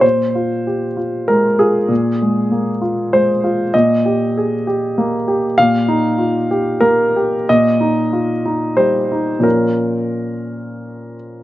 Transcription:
\new Staff \with { instrumentName = "Grand piano" } { \time 3/4 \key ees \mixolydian \tempo 4 = 96 << { c''2 bes'8 aes'8~ | aes'4. r8 c''4 | ees''2. | f''2 bes'4 |
ees''2 c''4 | bes'2~ bes'8 r8 | } \\ { bes,8 f'8 g'8 f'8 aes8 f'8 | bes,8 aes8 bes8 f'8 aes8 f'8 | bes,8 g'8 aes'8 g'8 bes8 g'8 | bes,8 ees'8 f'8 g'8 bes8 g'8 |
bes,8 ees'8 f'8 ees'8 g8 ees'8 | <bes, f des' f'>2. | } >> }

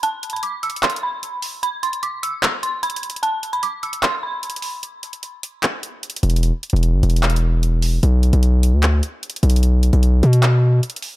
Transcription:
<<
  \new Staff \with { instrumentName = "Synth bell" } { \time 4/4 \key b \phrygian \tempo 4 = 150 a''8. b''16 d'''8 e'''8 c'''8 b''4. | b''8 c'''8 d'''8 e'''8 r8 c'''8 b''8 r8 | a''8. b''16 d'''8 e'''8 c'''8 b''4. | r1 |
r1 | r1 | r1 | }
  \new Staff \with { instrumentName = "808-style bass" } { \clef bass \time 4/4 \key b \phrygian r1 | r1 | r1 | r2. r8 e,,8~ |
e,,16 r8 e,,8 g,,16 e,,2~ e,,8 | b,,8. b,,4 d,8. r4 b,,8~ | b,,8. b,,8. b,4. r4 | }
  \new DrumStaff \with { instrumentName = "Drums" } \drummode { \time 4/4 \tuplet 3/2 { hh16 r16 r16 hh16 hh16 hh16 hh16 r16 r16 hh16 hh16 hh16 <hc hh>16 hh16 hh16 r16 r16 r16 } hh8 hho8 | hh8 hh16 hh16 hh8 hh8 <hc hh>8 hh8 \tuplet 3/2 { hh16 hh16 hh16 hh16 hh16 hh16 } | hh8 hh16 hh16 hh8 hh16 hh16 <hc hh>4 \tuplet 3/2 { hh16 hh16 hh16 hho16 r16 r16 } | hh8 hh16 hh16 hh8 hh8 <hc hh>8 hh8 \tuplet 3/2 { hh16 hh16 hh16 hh16 hh16 hh16 } |
\tuplet 3/2 { hh16 r16 r16 hh16 hh16 hh16 hh16 r16 r16 hh16 hh16 hh16 <hc hh>16 hh16 hh16 r16 r16 r16 } hh8 hho8 | hh8 hh16 hh16 hh8 hh8 <hc hh>8 hh8 \tuplet 3/2 { hh16 hh16 hh16 hh16 hh16 hh16 } | hh8 hh16 hh16 hh8 hh16 hh16 <hc hh>4 \tuplet 3/2 { hh16 hh16 hh16 hho16 r16 r16 } | }
>>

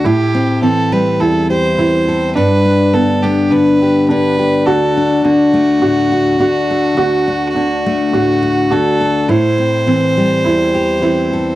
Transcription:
<<
  \new Staff \with { instrumentName = "Fiddle" } { \time 4/4 \key d \mixolydian \tempo 4 = 104 g'4 a'8 b'8 a'8 c''4. | b'4 a'8 g'8 b'4 b'4 | a'4 fis'2.~ | fis'2. a'4 |
c''1 | }
  \new Staff \with { instrumentName = "Felt piano" } { \time 4/4 \key d \mixolydian e'4 c'4 e'4 e'4 | d'4 b4 d'4 d'4 | fis'4 d'4 fis'4 fis'4 | fis'4 d'4 fis'4 fis'4 |
e'4 c'4 e'4 e'4 | }
  \new Staff \with { instrumentName = "Steel-string acoustic guitar" } { \time 4/4 \key d \mixolydian << { r8 c'4 g4 g'8 c'8 a'8 | r8 d'4 b4 g'8 d'8 g'8 | r8 d'4 a4 fis'8 d'8 a'8 | r8 d'4 a4 fis'8 d'8 a'8 |
r8 c'4 g4 g'8 c'8 a'8 | } \\ { a,4 e4 e,4 e4 | g,4 d4 d4 d4 | d,4 d4 a,4 d4 | d,4 d4 a,4 d4 |
a,4 e4 e,4 e4 | } >> }
>>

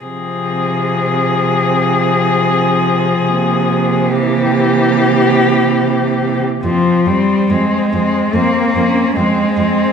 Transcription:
<<
  \new Staff \with { instrumentName = "Cello" } { \time 4/4 \key f \minor \tempo 4 = 73 aes'1~ | aes'4 g'2~ g'8. r16 | c'8 c'8 c'8 c'8 c'8 c'8 c'8 c'8 | }
  \new Staff \with { instrumentName = "Cello" } { \time 4/4 \key f \minor c'1 | bes2.~ bes8. r16 | r2 c'8 des'8 c'4 | }
  \new Staff \with { instrumentName = "Cello" } { \clef bass \time 4/4 \key f \minor f1~ | f4 e2~ e8. r16 | f8 g8 aes4 bes4 aes4 | }
  \new Staff \with { instrumentName = "Cello" } { \clef bass \time 4/4 \key f \minor c1 | c2.~ c8. r16 | f,8 f,8 f,8 f,8 f,8 f,8 f,8 f,8 | }
>>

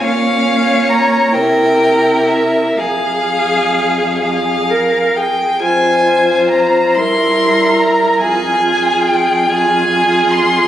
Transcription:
<<
  \new Staff \with { instrumentName = "Violin" } { \time 6/8 \key f \minor \tempo 4. = 46 f''4 bes''8 g''4 e''8 | f''4. f''4 g''8 | aes''4 bes''8 c'''4 bes''8 | aes''4 g''8 aes''4 c'''8 | }
  \new Staff \with { instrumentName = "Violin" } { \time 6/8 \key f \minor des''4. bes'4. | aes'2~ aes'16 r8. | c''4. bes'4. | aes'4. aes'4. | }
  \new Staff \with { instrumentName = "Viola" } { \time 6/8 \key f \minor des'4. e'4. | aes'4. aes'8 bes'8 aes'8 | f'4. e'4. | f'4. f'4. | }
  \new Staff \with { instrumentName = "Cello" } { \clef bass \time 6/8 \key f \minor bes,4. c4. | f,2~ f,8. r16 | f,4. g,4. | f,2. | }
>>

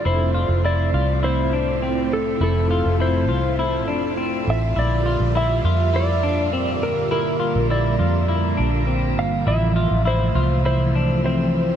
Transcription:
<<
  \new Staff \with { instrumentName = "Synth bell" } { \time 4/4 \key f \major \tempo 4 = 102 r1 | r1 | r1 | r1 |
r4 e''8 c''4 r8 e''16 g''8. | }
  \new Staff \with { instrumentName = "Electric slide guitar" } { \time 4/4 \key f \major c''4 d''4 c''4. a'8 | a'4 c''4. r4 e''8 | d''4 e''4 d''4. bes'8 | bes'4 d''4. r4 f''8 |
e''4 c''4 c''4 c''4 | }
  \new Staff \with { instrumentName = "Clean electric guitar" } { \time 4/4 \key f \major e'8 f'8 e'8 f'8 e'8 d'8 c'4 | e'8 f'8 e'8 f'8 e'8 d'8 c'4 | e'8 f'8 e'8 f'8 e'8 d'8 c'4 | e'8 f'8 e'8 f'8 e'8 d'8 c'4 |
e'8 f'8 e'8 f'8 e'8 d'8 c'4 | }
  \new Staff \with { instrumentName = "String machine" } { \time 4/4 \key f \major << { f'1~ | f'1~ | f'1~ | f'1 |
e1 | } \\ { <a c' e'>1~ | <a c' e'>1 | <d g bes>1~ | <d g bes>1 |
<c f a>1 | } >> }
  \new Staff \with { instrumentName = "Fingered electric bass" } { \clef bass \time 4/4 \key f \major f,,8. f,,8. c,2~ c,8 | f,,8. f,,8. c,4 f,,4 a,,8 | bes,,8. bes,,8. f,2~ f,8 | bes,,8. bes,,8. f,4 bes,,4 g,,8 |
a,,8. a,,8. c,2~ c,8 | }
>>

